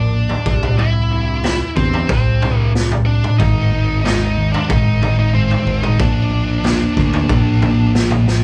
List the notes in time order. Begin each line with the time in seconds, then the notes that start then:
Already playing: A#1 A#2 F3 A#3 D4 D5
0.14 A#2 F3
0.29 floor tom
0.45 C2 G2 C3, kick
0.63 mid tom
0.78 C2 G2 E4 E5, floor tom
1.10 C2 G2 C3
1.43 C2 G2, snare, floor tom
1.76 C2 E2 G2 C3 C4 C5, kick
1.93 floor tom
2.09 C2 G2 C4 C5, kick, mid tom
2.41 C2 G2 C3, floor tom, mid tom
2.57 A#4
2.74 C2 G2, snare
2.91 floor tom, mid tom
3.06 C2 G2 D4 D5
3.24 mid tom
3.38 G#1 G#2 D#3 G#3 D#4 D#5, kick, floor tom
3.72 G#2 D#3 G#3
4.04 G#2 D#3 G#3 D#4 D#5, snare, floor tom
4.37 G#2 D#3 G#3
4.52 D4 D5, floor tom
4.69 G#1 G#2 D#3 G#3 D#4 D#5, kick, mid tom
5.01 G#2 D#3 G#3, floor tom, mid tom
5.19 D#4 D#5
5.34 G#2 D#3 G#3 C4 C5
5.51 floor tom
5.66 G#1 G#2 D#3 G#3
5.82 D#4 D#5, mid tom
5.99 A#1 A#2 F3 A#3 D4 D5, kick, floor tom
6.31 A#2 F3 A#3
6.63 A#2 F3 A#3, snare, floor tom
6.97 D2 A#2 F3 A#3, kick
7.13 floor tom
7.29 A#1 A#2 F3 A#3, kick, mid tom
7.62 A#2 F3 A#3, floor tom, mid tom
7.94 A#2 F3 A#3, snare
8.11 floor tom, mid tom
8.27 A#2 F3 A#3, snare